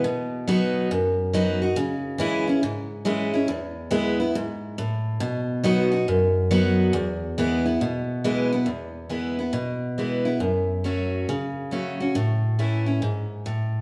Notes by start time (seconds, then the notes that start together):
0.04 B2
0.47 F#3 B3 D#4 F#4
0.91 F#2
1.33 F#3 B3 D#4 F#4
1.62 D#4 F#4
1.76 C#3
2.18 E3 G#3 C#4 E4
2.47 C#4 E4
2.63 G#2
3.05 E3 G#3 C#4 E4
3.33 C#4 E4
3.48 E2
3.91 E3 G#3 B3 E4
4.20 B3 E4
4.35 G#2
4.78 A2
5.20 B2
5.64 F#3 B3 D#4 F#4
5.92 D#4 F#4
6.08 F#2
6.51 F#3 B3 D#4 F#4
6.93 E2
7.38 E3 G#3 B3 E4
7.65 B3 E4
7.81 B2
8.24 E3 G#3 B3 E4
8.52 B3 E4
8.66 E2
9.09 E3 G#3 B3 E4
9.39 B3 E4
9.53 B2
9.98 E3 G#3 B3 E4
10.25 B3 E4
10.40 F#2
10.84 F#3 A3 C#4 F#4
11.29 C#3
11.71 F#3 A3 C#4 F#4
12.00 C#4 F#4
12.15 A2
12.59 E3 A3 C#4 E4
12.86 C#4 E4
13.02 G#2
13.46 A2